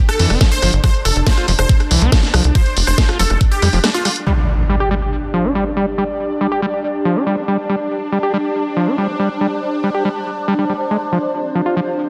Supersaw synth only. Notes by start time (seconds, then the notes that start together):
0.09 A4
0.52 C5
0.84 C5
1.05 A4
1.26 C5
1.59 C5
2.55 C5
2.87 C5
3.19 A4
3.52 G4
3.94 F4